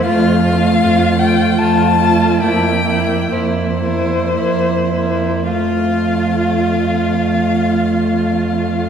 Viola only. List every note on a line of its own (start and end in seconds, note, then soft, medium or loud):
0.06 0.43 A3 soft
0.45 0.81 A3 soft
0.83 1.19 A3 soft
1.19 1.58 A3 soft
1.60 1.99 A3 soft
1.99 2.41 A3 soft
2.42 2.85 A#3 soft
2.86 3.31 A#3 soft
3.32 3.80 A#3 soft
3.82 4.34 A#3 soft
4.34 4.91 A#3 soft
4.95 5.51 A#3 soft
5.53 8.89 A3 soft